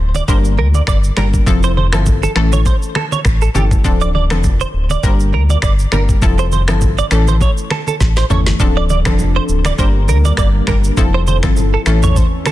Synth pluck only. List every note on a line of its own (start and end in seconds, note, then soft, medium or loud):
0.28 1.11 G3 medium
0.28 1.11 A#3 medium
0.28 1.11 D4 medium
0.28 1.11 A#4 loud
1.17 1.40 G3 medium
1.17 1.40 A#3 medium
1.17 1.40 D4 medium
1.17 1.40 A#4 medium
1.47 1.70 F3 medium
1.47 1.70 C4 medium
1.47 1.70 E4 medium
1.47 1.70 A4 loud
1.93 2.14 F3 medium
1.93 2.15 C4 medium
1.93 2.15 E4 medium
1.93 2.15 A4 medium
2.36 3.46 E3 medium
2.36 3.46 A3 medium
2.36 3.46 C#4 medium
2.36 3.46 A4 loud
3.55 3.82 E3 medium
3.55 3.82 A3 medium
3.55 3.82 C#4 medium
3.55 3.83 A4 medium
3.84 4.07 F3 medium
3.84 4.08 C4 medium
3.84 4.08 D4 medium
3.84 4.08 A4 loud
4.30 4.52 F3 medium
4.30 4.52 C4 medium
4.30 4.52 D4 medium
4.30 4.52 A4 medium
5.03 5.86 G3 medium
5.03 5.86 A#3 medium
5.03 5.86 D4 medium
5.03 5.86 A#4 loud
5.92 6.15 G3 medium
5.92 6.16 A#3 medium
5.92 6.16 D4 medium
5.92 6.16 A#4 medium
6.22 6.45 F3 medium
6.22 6.45 C4 medium
6.22 6.45 E4 medium
6.22 6.45 A4 loud
6.68 6.90 F3 medium
6.68 6.90 C4 medium
6.68 6.90 E4 medium
6.68 6.90 A4 medium
7.11 8.22 E3 loud
7.11 8.22 A3 medium
7.11 8.22 C#4 medium
7.11 8.22 A4 loud
8.30 8.58 E3 medium
8.30 8.58 A3 medium
8.30 8.58 C#4 medium
8.30 8.58 A4 medium
8.60 8.83 F3 medium
8.60 8.83 C4 medium
8.60 8.83 D4 medium
8.60 8.83 A4 loud
9.06 9.27 F3 medium
9.06 9.28 C4 medium
9.06 9.28 D4 medium
9.06 9.28 A4 medium
9.78 10.61 G3 medium
9.78 10.61 A#3 medium
9.78 10.61 D4 medium
9.78 10.62 A#4 loud
10.68 10.91 G3 medium
10.68 10.91 A#3 medium
10.68 10.91 D4 medium
10.68 10.91 A#4 medium
10.97 11.20 F3 medium
10.97 11.20 C4 medium
10.97 11.21 E4 medium
10.97 11.21 A4 loud
11.43 11.65 F3 medium
11.43 11.65 C4 medium
11.43 11.65 E4 medium
11.43 11.65 A4 medium
11.86 12.52 E3 loud
11.86 12.52 A3 medium
11.86 12.52 C#4 medium
11.86 12.52 A4 loud